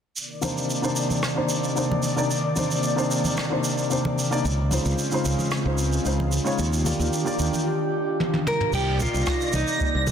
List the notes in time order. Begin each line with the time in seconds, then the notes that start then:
0.16 C3 D#3 A#3 D5, shaker
0.41 C3 A#3 D4 D#4 C5, high conga, shaker
0.58 shaker
0.70 shaker
0.82 C3 A#3 D4 D#4 C5, shaker
0.96 shaker
1.10 high conga, shaker
1.23 cross-stick, shaker
1.35 C3 A#3 D4 D#4 C5
1.49 shaker
1.64 shaker
1.75 C3 A#3 D4 D#4 C5, shaker
1.91 high conga
2.03 shaker
2.16 C3 A#3 D4 D#4 D5, shaker
2.31 shaker
2.56 C3 A#3 D4 D#4 C5, high conga, shaker
2.71 shaker
2.83 shaker
2.96 C3 A#3 D4 D#4 C5, shaker
3.11 shaker
3.24 high conga, shaker
3.37 cross-stick, shaker
3.50 C3 A#3 D4 D#4 C5
3.64 shaker
3.78 shaker
3.90 C3 A#3 D4 D#4 C5, shaker
4.05 high conga
4.19 shaker
4.31 C3 A#3 D4 D#4 D5, shaker
4.45 C#2 C#3 G#3 C4 F4, shaker
4.70 C#3 G#3 D#4 F4 C5, high conga, shaker
4.85 C#2, shaker
4.98 shaker
5.11 C#3 G#3 D#4 F4 C5, shaker
5.25 C#2, shaker
5.39 high conga, shaker
5.51 cross-stick, shaker
5.64 C#2 C#3 G#3 D#4 F4 C5
5.78 shaker
5.92 shaker
6.04 C#2 C#3 G#3 D#4 F4 C5, shaker
6.20 high conga
6.32 shaker
6.44 C#3 G#3 D#4 F4 C#5, shaker
6.59 D#2 D#3 D4 G4, shaker
6.73 shaker
6.84 D#3 A#3 F4 G4 D5, high conga, shaker
6.99 D#2, shaker
7.13 shaker
7.25 D#3 A#3 F4 G4 D5, shaker
7.39 D#2, shaker
7.53 high conga, shaker
8.20 high tom
8.34 high tom
8.47 A#4, mid tom
8.60 mid tom
8.73 C2 C3 A#3 D#4 G4 D5 A#6, kick, crash, shaker
9.00 F4, low conga, shaker
9.14 C2, shaker
9.27 kick, cross-stick, shaker
9.41 shaker
9.53 C2 D#4, high conga, shaker
9.68 shaker
9.80 kick, shaker
9.95 C2
10.07 high conga, low conga, shaker